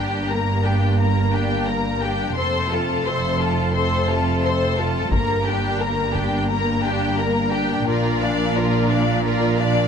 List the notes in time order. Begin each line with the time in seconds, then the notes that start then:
Already playing: G1 G2 A#3 D4 G4 G5
0.30 A#3 A#4 A#5
0.65 D4 G4 G5
0.99 A#3 A#4 A#5
1.34 D4 G4 G5
1.68 A#3 A#4 A#5
2.02 D4 G4 G5
2.36 F1 F2 A3 C4 A4 C5 C6
2.70 F4 A4 A5
3.06 A4 C5 C6
3.40 F4 A4 A5
3.74 A4 C5 C6
4.09 F4 A4 A5
4.43 A4 C5 C6
4.77 F4 A4 A5
5.12 G1 G2 A#3 D4 A#4 A#5, taiko
5.46 D4 G4 G5
5.80 A#3 A#4 A#5
6.14 D4 G4 G5, taiko
6.49 A#3 A#4 A#5
6.83 D4 G4 G5
7.18 A#3 A#4 A#5
7.52 D4 G4 G5
7.87 A#1 A#2 F4 A#4 D5
8.22 D4 D5 F5
8.56 F4 A#4 D5
8.90 D4 D5 F5
9.24 F4 A#4 D5
9.58 D4 D5 F5